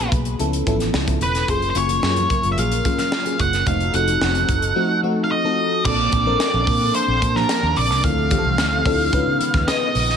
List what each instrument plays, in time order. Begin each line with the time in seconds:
Already playing: fm electric piano A#3 B3 D#4 F#4 G#4 B4
0.12 fingered electric bass B1, kick, closed hi-hat, low conga
0.25 closed hi-hat
0.39 fingered electric bass C#2, fm electric piano F3 B3 C#4 E4 A4, closed hi-hat, muted conga
0.53 closed hi-hat
0.66 fingered electric bass A1, fm electric piano F3 B3 C#4 E4 A4, kick, closed hi-hat, high conga
0.80 snare, closed hi-hat, high conga
0.94 fingered electric bass C#2, snare
1.07 fm electric piano F3 B3 C#4 E4 A4, kick, closed hi-hat, muted conga
1.21 fingered electric bass E1, lead electric guitar B4, closed hi-hat, low conga
1.35 snare, closed hi-hat
1.48 fingered electric bass F#1, fm electric piano F#3 A#3 C#4 F4 G#4, analog synth pad F#3 C#4 F4 A#4, lead electric guitar C5, kick, closed hi-hat, low conga
1.62 closed hi-hat, muted conga
1.70 lead electric guitar C5
1.75 fingered electric bass F#1, fm electric piano F#3 A#3 C#4 F4 G#4, lead electric guitar C#5, closed hi-hat
1.89 closed hi-hat, high conga
2.03 fingered electric bass F#2, fm electric piano F#3 A#3 C#4 F4 G#4, snare
2.16 closed hi-hat, muted conga, high conga
2.30 kick, closed hi-hat, low conga
2.43 fingered electric bass F#1, closed hi-hat
2.52 lead electric guitar E5
2.57 fingered electric bass A#1, fm electric piano F#3 A#3 C#4 F4 G#4, lead electric guitar F5, closed hi-hat
2.72 closed hi-hat
2.84 fm electric piano F#3 A#3 C#4 F4 G#4, kick, closed hi-hat, high conga
2.98 lead electric guitar F5, snare, closed hi-hat, high conga
3.12 snare, muted conga
3.25 fm electric piano F#3 A#3 C#4 F4 G#4, closed hi-hat, muted conga
3.39 fingered electric bass F#1, lead electric guitar F#5, kick, closed hi-hat, low conga
3.53 snare, closed hi-hat
3.66 fingered electric bass F1, fm electric piano F3 A3 C4 D#4 F#4, analog synth pad F3 D#4 F#4 A4, lead electric guitar F5, kick, closed hi-hat, muted conga, low conga
3.80 closed hi-hat, muted conga
3.94 fingered electric bass F1, fm electric piano F3 A3 C4 D#4 F#4, lead electric guitar F#5, closed hi-hat
4.07 closed hi-hat, high conga
4.21 fingered electric bass F1, fm electric piano F3 A3 C4 D#4 F#4, snare
4.35 closed hi-hat, high conga
4.48 fingered electric bass F#1, kick, closed hi-hat, low conga
4.62 closed hi-hat
4.75 fm electric piano F3 A3 C4 D#4 F#4
5.03 fm electric piano F3 A3 C4 D#4 F#4
5.24 lead electric guitar F5
5.31 lead electric guitar D#5
5.44 fm electric piano F3 A3 C4 D#4 A4
5.84 fingered electric bass A#1, fm electric piano F3 A#3 C4 D4 A4, analog synth pad A#3 C4 D4, lead electric guitar D5, kick, crash, muted conga, low conga
6.12 fingered electric bass A#1, kick, closed hi-hat
6.26 fm electric piano F3 A#3 C4 D4 A#4, high conga
6.40 lead electric guitar D5, snare, closed hi-hat
6.54 fingered electric bass A#1, muted conga, high conga
6.67 fingered electric bass A#2, kick, open hi-hat, low conga
6.95 lead electric guitar C5, closed hi-hat, muted conga
7.08 fingered electric bass A#1, muted conga
7.22 fingered electric bass A#2, kick, closed hi-hat, high conga
7.35 fm electric piano F3 A#3 C4 D4 G4, lead electric guitar A#4, snare, high conga
7.43 fm electric piano A5
7.49 snare, closed hi-hat
7.63 fingered electric bass D#2
7.76 fingered electric bass A#1, lead electric guitar D5, open hi-hat, low conga
7.90 fingered electric bass C2, snare
8.03 fingered electric bass D2, analog synth pad D3 A3 C4 F5, fm electric piano F3 C4 D4 E4 A4, lead electric guitar F5, kick, closed hi-hat, muted conga, low conga
8.18 muted conga
8.31 fm electric piano E3 F3 C4 D4 G4, kick, closed hi-hat
8.38 fm electric piano A4
8.45 fingered electric bass C2, high conga
8.58 fingered electric bass D2, snare, closed hi-hat
8.73 muted conga, high conga
8.85 fingered electric bass D2, fm electric piano F3 C4 D4 E4 A4, kick, open hi-hat, low conga
9.13 fingered electric bass C#2, analog synth pad C#3 D#3 B3, fm electric piano G#3 C#4 D#4 F4 B4, kick, closed hi-hat, muted conga
9.27 fingered electric bass C#3
9.40 closed hi-hat, high conga
9.54 fingered electric bass D#2, kick, snare, high conga
9.68 lead electric guitar D#5, snare, closed hi-hat
9.82 muted conga
9.95 fingered electric bass A#1, open hi-hat, low conga
10.09 snare